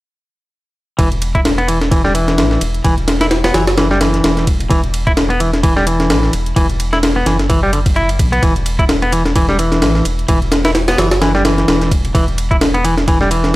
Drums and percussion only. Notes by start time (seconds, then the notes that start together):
0.99 kick, closed hi-hat, ride
1.12 closed hi-hat
1.22 closed hi-hat, ride
1.35 kick, closed hi-hat
1.45 snare, closed hi-hat, ride
1.58 ride
1.68 closed hi-hat, ride
1.81 snare, closed hi-hat
1.92 kick, closed hi-hat, ride
2.05 snare
2.15 closed hi-hat, ride
2.28 snare, closed hi-hat
2.38 snare, closed hi-hat, ride
2.51 snare
2.61 closed hi-hat, ride
2.74 closed hi-hat
2.85 kick, closed hi-hat, ride
2.98 closed hi-hat
3.08 snare, closed hi-hat, ride
3.21 snare, closed hi-hat, ride
3.31 snare, closed hi-hat, ride
3.44 snare, ride
3.54 snare, closed hi-hat, ride
3.67 snare, closed hi-hat, ride
3.78 snare, closed hi-hat, ride
3.91 snare
4.01 snare, closed hi-hat, ride
4.14 snare, closed hi-hat
4.24 snare, closed hi-hat, ride
4.37 snare, closed hi-hat
4.47 kick, closed hi-hat, ride
4.60 closed hi-hat, ride
4.71 kick, closed hi-hat, ride
4.84 closed hi-hat
4.94 closed hi-hat, ride
5.07 kick, closed hi-hat
5.17 snare, closed hi-hat, ride
5.30 ride
5.40 closed hi-hat, ride
5.53 snare, closed hi-hat
5.64 kick, closed hi-hat, ride
5.77 snare
5.87 closed hi-hat, ride
6.00 snare, closed hi-hat
6.10 snare, closed hi-hat, ride
6.23 snare
6.33 closed hi-hat, ride
6.46 closed hi-hat
6.56 kick, closed hi-hat, ride
6.70 closed hi-hat
6.80 closed hi-hat, ride
6.93 snare, closed hi-hat
7.03 snare, closed hi-hat, ride
7.26 snare, closed hi-hat, ride
7.39 snare, closed hi-hat
7.50 kick, closed hi-hat, ride
7.73 closed hi-hat, ride
7.86 kick, closed hi-hat, ride
7.96 closed hi-hat
8.09 closed hi-hat, ride
8.19 kick, closed hi-hat, ride
8.33 closed hi-hat
8.43 kick, closed hi-hat, ride
8.56 closed hi-hat
8.66 closed hi-hat, ride
8.79 kick, closed hi-hat
8.89 snare, closed hi-hat, ride
9.02 ride
9.12 closed hi-hat, ride
9.26 snare, closed hi-hat
9.36 kick, closed hi-hat, ride
9.49 snare
9.59 closed hi-hat, ride
9.72 snare, closed hi-hat
9.82 snare, closed hi-hat, ride
9.95 snare
10.05 closed hi-hat, ride
10.19 closed hi-hat
10.28 kick, closed hi-hat, ride
10.42 closed hi-hat
10.52 snare, closed hi-hat, ride
10.65 snare, closed hi-hat, ride
10.75 snare, closed hi-hat, ride
10.88 snare, ride
10.98 snare, closed hi-hat, ride
11.11 snare, closed hi-hat, ride
11.22 snare, closed hi-hat, ride
11.35 snare
11.45 snare, closed hi-hat, ride
11.58 snare, closed hi-hat
11.68 snare, closed hi-hat, ride
11.81 snare, closed hi-hat
11.91 kick, closed hi-hat, ride
12.05 closed hi-hat, ride
12.15 kick, closed hi-hat, ride
12.28 closed hi-hat
12.38 closed hi-hat, ride
12.51 kick, closed hi-hat
12.61 snare, closed hi-hat, ride
12.74 ride
12.85 closed hi-hat, ride
12.98 snare, closed hi-hat
13.08 kick, closed hi-hat, ride
13.21 snare
13.31 closed hi-hat, ride
13.44 snare, closed hi-hat